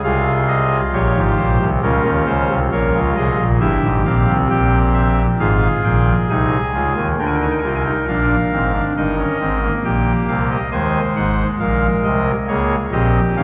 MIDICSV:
0, 0, Header, 1, 2, 480
1, 0, Start_track
1, 0, Key_signature, -5, "minor"
1, 0, Tempo, 892857
1, 24, Time_signature, 4, 2, 24, 8
1, 4344, Tempo, 882353
1, 7256, End_track
2, 0, Start_track
2, 0, Title_t, "Pipe organ"
2, 0, Program_c, 0, 19
2, 19, Note_on_c, 0, 77, 98
2, 20, Note_on_c, 0, 36, 77
2, 21, Note_on_c, 0, 48, 80
2, 21, Note_on_c, 0, 65, 85
2, 21, Note_on_c, 0, 68, 82
2, 169, Note_off_c, 0, 77, 0
2, 258, Note_on_c, 0, 75, 91
2, 408, Note_off_c, 0, 75, 0
2, 432, Note_off_c, 0, 36, 0
2, 433, Note_off_c, 0, 48, 0
2, 433, Note_off_c, 0, 68, 0
2, 500, Note_on_c, 0, 34, 77
2, 500, Note_on_c, 0, 46, 72
2, 500, Note_on_c, 0, 73, 77
2, 501, Note_on_c, 0, 67, 68
2, 603, Note_off_c, 0, 34, 0
2, 603, Note_off_c, 0, 46, 0
2, 618, Note_on_c, 0, 32, 69
2, 618, Note_on_c, 0, 44, 63
2, 648, Note_off_c, 0, 73, 0
2, 721, Note_off_c, 0, 44, 0
2, 722, Note_off_c, 0, 32, 0
2, 736, Note_on_c, 0, 34, 74
2, 737, Note_on_c, 0, 72, 89
2, 738, Note_on_c, 0, 46, 75
2, 840, Note_off_c, 0, 34, 0
2, 841, Note_off_c, 0, 46, 0
2, 844, Note_off_c, 0, 65, 0
2, 860, Note_on_c, 0, 48, 73
2, 861, Note_on_c, 0, 36, 72
2, 886, Note_off_c, 0, 72, 0
2, 912, Note_off_c, 0, 67, 0
2, 963, Note_off_c, 0, 36, 0
2, 963, Note_off_c, 0, 48, 0
2, 977, Note_on_c, 0, 37, 83
2, 977, Note_on_c, 0, 49, 78
2, 978, Note_on_c, 0, 70, 97
2, 979, Note_on_c, 0, 61, 82
2, 980, Note_on_c, 0, 65, 78
2, 1082, Note_off_c, 0, 37, 0
2, 1082, Note_off_c, 0, 49, 0
2, 1097, Note_on_c, 0, 51, 70
2, 1098, Note_on_c, 0, 39, 73
2, 1128, Note_off_c, 0, 70, 0
2, 1202, Note_off_c, 0, 51, 0
2, 1203, Note_off_c, 0, 39, 0
2, 1217, Note_on_c, 0, 37, 82
2, 1217, Note_on_c, 0, 49, 77
2, 1218, Note_on_c, 0, 72, 89
2, 1322, Note_off_c, 0, 37, 0
2, 1323, Note_off_c, 0, 49, 0
2, 1339, Note_on_c, 0, 36, 71
2, 1339, Note_on_c, 0, 48, 71
2, 1368, Note_off_c, 0, 72, 0
2, 1394, Note_off_c, 0, 61, 0
2, 1395, Note_off_c, 0, 65, 0
2, 1444, Note_off_c, 0, 36, 0
2, 1444, Note_off_c, 0, 48, 0
2, 1458, Note_on_c, 0, 34, 75
2, 1459, Note_on_c, 0, 46, 69
2, 1459, Note_on_c, 0, 65, 77
2, 1459, Note_on_c, 0, 70, 73
2, 1460, Note_on_c, 0, 73, 84
2, 1563, Note_off_c, 0, 34, 0
2, 1563, Note_off_c, 0, 46, 0
2, 1576, Note_on_c, 0, 49, 71
2, 1577, Note_on_c, 0, 37, 69
2, 1608, Note_off_c, 0, 70, 0
2, 1609, Note_off_c, 0, 73, 0
2, 1682, Note_off_c, 0, 37, 0
2, 1682, Note_off_c, 0, 49, 0
2, 1697, Note_on_c, 0, 36, 72
2, 1697, Note_on_c, 0, 48, 66
2, 1697, Note_on_c, 0, 75, 91
2, 1698, Note_on_c, 0, 68, 73
2, 1802, Note_off_c, 0, 36, 0
2, 1802, Note_off_c, 0, 48, 0
2, 1817, Note_on_c, 0, 34, 71
2, 1818, Note_on_c, 0, 46, 73
2, 1846, Note_off_c, 0, 75, 0
2, 1848, Note_off_c, 0, 68, 0
2, 1872, Note_off_c, 0, 65, 0
2, 1922, Note_off_c, 0, 34, 0
2, 1922, Note_off_c, 0, 46, 0
2, 1936, Note_on_c, 0, 31, 78
2, 1936, Note_on_c, 0, 64, 81
2, 1936, Note_on_c, 0, 67, 79
2, 1937, Note_on_c, 0, 43, 76
2, 1937, Note_on_c, 0, 76, 96
2, 2041, Note_off_c, 0, 31, 0
2, 2041, Note_off_c, 0, 43, 0
2, 2058, Note_on_c, 0, 32, 68
2, 2058, Note_on_c, 0, 44, 68
2, 2086, Note_off_c, 0, 64, 0
2, 2086, Note_off_c, 0, 76, 0
2, 2162, Note_off_c, 0, 32, 0
2, 2162, Note_off_c, 0, 44, 0
2, 2176, Note_on_c, 0, 34, 76
2, 2176, Note_on_c, 0, 46, 69
2, 2176, Note_on_c, 0, 77, 87
2, 2177, Note_on_c, 0, 60, 67
2, 2280, Note_off_c, 0, 34, 0
2, 2280, Note_off_c, 0, 46, 0
2, 2299, Note_on_c, 0, 36, 71
2, 2299, Note_on_c, 0, 48, 72
2, 2326, Note_off_c, 0, 77, 0
2, 2349, Note_off_c, 0, 67, 0
2, 2402, Note_off_c, 0, 36, 0
2, 2402, Note_off_c, 0, 48, 0
2, 2415, Note_on_c, 0, 79, 90
2, 2416, Note_on_c, 0, 34, 71
2, 2417, Note_on_c, 0, 67, 69
2, 2418, Note_on_c, 0, 46, 72
2, 2565, Note_off_c, 0, 79, 0
2, 2655, Note_on_c, 0, 76, 80
2, 2797, Note_off_c, 0, 60, 0
2, 2806, Note_off_c, 0, 76, 0
2, 2831, Note_off_c, 0, 34, 0
2, 2832, Note_off_c, 0, 46, 0
2, 2832, Note_off_c, 0, 67, 0
2, 2899, Note_on_c, 0, 32, 77
2, 2899, Note_on_c, 0, 65, 82
2, 2900, Note_on_c, 0, 44, 74
2, 2900, Note_on_c, 0, 68, 81
2, 2900, Note_on_c, 0, 77, 91
2, 3049, Note_off_c, 0, 32, 0
2, 3049, Note_off_c, 0, 44, 0
2, 3049, Note_off_c, 0, 77, 0
2, 3139, Note_on_c, 0, 46, 67
2, 3139, Note_on_c, 0, 79, 83
2, 3141, Note_on_c, 0, 34, 71
2, 3289, Note_off_c, 0, 46, 0
2, 3289, Note_off_c, 0, 79, 0
2, 3290, Note_off_c, 0, 34, 0
2, 3314, Note_off_c, 0, 65, 0
2, 3382, Note_on_c, 0, 36, 69
2, 3383, Note_on_c, 0, 48, 65
2, 3383, Note_on_c, 0, 63, 66
2, 3384, Note_on_c, 0, 80, 78
2, 3531, Note_off_c, 0, 36, 0
2, 3532, Note_off_c, 0, 48, 0
2, 3532, Note_off_c, 0, 63, 0
2, 3623, Note_on_c, 0, 37, 69
2, 3624, Note_on_c, 0, 65, 71
2, 3625, Note_on_c, 0, 49, 69
2, 3726, Note_off_c, 0, 37, 0
2, 3727, Note_off_c, 0, 49, 0
2, 3728, Note_off_c, 0, 68, 0
2, 3742, Note_on_c, 0, 51, 64
2, 3743, Note_on_c, 0, 39, 71
2, 3772, Note_off_c, 0, 65, 0
2, 3797, Note_off_c, 0, 80, 0
2, 3846, Note_off_c, 0, 39, 0
2, 3846, Note_off_c, 0, 51, 0
2, 3862, Note_on_c, 0, 38, 74
2, 3863, Note_on_c, 0, 62, 67
2, 3863, Note_on_c, 0, 79, 56
2, 3864, Note_on_c, 0, 50, 71
2, 3864, Note_on_c, 0, 70, 63
2, 3905, Note_on_c, 0, 80, 54
2, 3906, Note_off_c, 0, 79, 0
2, 3949, Note_off_c, 0, 80, 0
2, 3949, Note_on_c, 0, 79, 57
2, 3966, Note_off_c, 0, 62, 0
2, 3980, Note_on_c, 0, 63, 57
2, 3990, Note_on_c, 0, 80, 53
2, 3992, Note_off_c, 0, 79, 0
2, 4011, Note_off_c, 0, 38, 0
2, 4012, Note_off_c, 0, 50, 0
2, 4034, Note_off_c, 0, 80, 0
2, 4035, Note_on_c, 0, 79, 53
2, 4077, Note_on_c, 0, 80, 55
2, 4078, Note_off_c, 0, 79, 0
2, 4084, Note_off_c, 0, 63, 0
2, 4104, Note_on_c, 0, 65, 61
2, 4105, Note_on_c, 0, 36, 68
2, 4106, Note_on_c, 0, 48, 69
2, 4121, Note_off_c, 0, 80, 0
2, 4122, Note_on_c, 0, 79, 56
2, 4164, Note_on_c, 0, 80, 55
2, 4165, Note_off_c, 0, 79, 0
2, 4207, Note_off_c, 0, 65, 0
2, 4208, Note_off_c, 0, 80, 0
2, 4209, Note_on_c, 0, 79, 64
2, 4221, Note_on_c, 0, 63, 61
2, 4253, Note_off_c, 0, 36, 0
2, 4253, Note_off_c, 0, 48, 0
2, 4325, Note_off_c, 0, 63, 0
2, 4325, Note_off_c, 0, 79, 0
2, 4341, Note_on_c, 0, 46, 65
2, 4341, Note_on_c, 0, 62, 55
2, 4342, Note_on_c, 0, 34, 68
2, 4342, Note_on_c, 0, 77, 59
2, 4491, Note_off_c, 0, 46, 0
2, 4492, Note_off_c, 0, 34, 0
2, 4492, Note_off_c, 0, 62, 0
2, 4584, Note_on_c, 0, 32, 64
2, 4585, Note_on_c, 0, 44, 67
2, 4585, Note_on_c, 0, 60, 59
2, 4689, Note_off_c, 0, 60, 0
2, 4691, Note_off_c, 0, 70, 0
2, 4702, Note_on_c, 0, 62, 59
2, 4734, Note_off_c, 0, 32, 0
2, 4734, Note_off_c, 0, 44, 0
2, 4758, Note_off_c, 0, 77, 0
2, 4807, Note_off_c, 0, 62, 0
2, 4824, Note_on_c, 0, 70, 67
2, 4825, Note_on_c, 0, 43, 71
2, 4825, Note_on_c, 0, 63, 69
2, 4826, Note_on_c, 0, 31, 76
2, 4826, Note_on_c, 0, 75, 71
2, 4929, Note_off_c, 0, 63, 0
2, 4942, Note_on_c, 0, 61, 59
2, 4974, Note_off_c, 0, 43, 0
2, 4975, Note_off_c, 0, 31, 0
2, 5047, Note_off_c, 0, 61, 0
2, 5064, Note_on_c, 0, 60, 62
2, 5065, Note_on_c, 0, 32, 66
2, 5065, Note_on_c, 0, 44, 72
2, 5168, Note_off_c, 0, 60, 0
2, 5182, Note_on_c, 0, 58, 62
2, 5214, Note_off_c, 0, 32, 0
2, 5214, Note_off_c, 0, 44, 0
2, 5238, Note_off_c, 0, 70, 0
2, 5239, Note_off_c, 0, 75, 0
2, 5302, Note_on_c, 0, 34, 66
2, 5302, Note_on_c, 0, 46, 68
2, 5302, Note_on_c, 0, 67, 58
2, 5303, Note_on_c, 0, 79, 66
2, 5451, Note_off_c, 0, 46, 0
2, 5452, Note_off_c, 0, 34, 0
2, 5452, Note_off_c, 0, 79, 0
2, 5538, Note_on_c, 0, 77, 61
2, 5539, Note_on_c, 0, 36, 69
2, 5539, Note_on_c, 0, 48, 70
2, 5644, Note_off_c, 0, 77, 0
2, 5660, Note_on_c, 0, 75, 67
2, 5689, Note_off_c, 0, 36, 0
2, 5689, Note_off_c, 0, 48, 0
2, 5699, Note_off_c, 0, 58, 0
2, 5715, Note_off_c, 0, 67, 0
2, 5765, Note_off_c, 0, 75, 0
2, 5776, Note_on_c, 0, 39, 77
2, 5776, Note_on_c, 0, 56, 75
2, 5777, Note_on_c, 0, 51, 73
2, 5777, Note_on_c, 0, 80, 85
2, 5778, Note_on_c, 0, 72, 71
2, 5927, Note_off_c, 0, 39, 0
2, 5928, Note_off_c, 0, 51, 0
2, 5928, Note_off_c, 0, 80, 0
2, 6017, Note_on_c, 0, 32, 67
2, 6018, Note_on_c, 0, 44, 65
2, 6019, Note_on_c, 0, 78, 74
2, 6167, Note_off_c, 0, 32, 0
2, 6167, Note_off_c, 0, 44, 0
2, 6168, Note_off_c, 0, 78, 0
2, 6192, Note_off_c, 0, 72, 0
2, 6255, Note_on_c, 0, 46, 65
2, 6255, Note_on_c, 0, 70, 68
2, 6255, Note_on_c, 0, 77, 79
2, 6256, Note_on_c, 0, 34, 62
2, 6406, Note_off_c, 0, 34, 0
2, 6406, Note_off_c, 0, 46, 0
2, 6406, Note_off_c, 0, 77, 0
2, 6496, Note_on_c, 0, 75, 70
2, 6498, Note_on_c, 0, 36, 69
2, 6498, Note_on_c, 0, 48, 66
2, 6603, Note_off_c, 0, 56, 0
2, 6646, Note_off_c, 0, 75, 0
2, 6648, Note_off_c, 0, 36, 0
2, 6648, Note_off_c, 0, 48, 0
2, 6670, Note_off_c, 0, 70, 0
2, 6734, Note_on_c, 0, 49, 77
2, 6734, Note_on_c, 0, 68, 71
2, 6735, Note_on_c, 0, 37, 75
2, 6735, Note_on_c, 0, 73, 81
2, 6736, Note_on_c, 0, 58, 75
2, 6885, Note_off_c, 0, 49, 0
2, 6885, Note_off_c, 0, 68, 0
2, 6886, Note_off_c, 0, 37, 0
2, 6886, Note_off_c, 0, 73, 0
2, 6887, Note_off_c, 0, 58, 0
2, 6976, Note_on_c, 0, 46, 68
2, 6976, Note_on_c, 0, 67, 73
2, 6976, Note_on_c, 0, 75, 81
2, 6977, Note_on_c, 0, 60, 72
2, 6978, Note_on_c, 0, 34, 70
2, 7127, Note_off_c, 0, 46, 0
2, 7127, Note_off_c, 0, 75, 0
2, 7128, Note_off_c, 0, 34, 0
2, 7128, Note_off_c, 0, 60, 0
2, 7218, Note_on_c, 0, 44, 64
2, 7218, Note_on_c, 0, 61, 73
2, 7219, Note_on_c, 0, 32, 67
2, 7219, Note_on_c, 0, 77, 82
2, 7256, Note_off_c, 0, 32, 0
2, 7256, Note_off_c, 0, 44, 0
2, 7256, Note_off_c, 0, 61, 0
2, 7256, Note_off_c, 0, 67, 0
2, 7256, Note_off_c, 0, 77, 0
2, 7256, End_track
0, 0, End_of_file